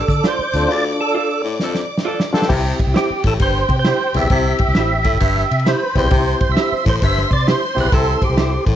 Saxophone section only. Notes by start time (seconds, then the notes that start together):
1.61 F3 D4 A4
2.04 F3 D4 A4
2.33 E3 C4 A4